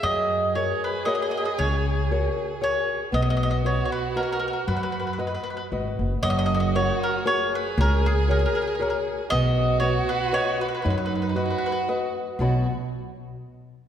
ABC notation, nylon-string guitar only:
X:1
M:3/4
L:1/8
Q:"Swing" 1/4=117
K:B
V:1 name="Nylon-string guitar"
F,2 [FAc]2 [FAc]2 | C,2 [FAc]2 [FAc]2 | B,2 [FBd]2 [FBd]2 | F,2 [FBd]2 [FBd]2 |
F,2 [FAc]2 [FAc]2 | C,2 [FAc]2 [FAc]2 | B,2 [FBd]2 [FBd]2 | F,2 [FBd]2 [FBd]2 |
[B,,F,B,Fdb] z4 z |]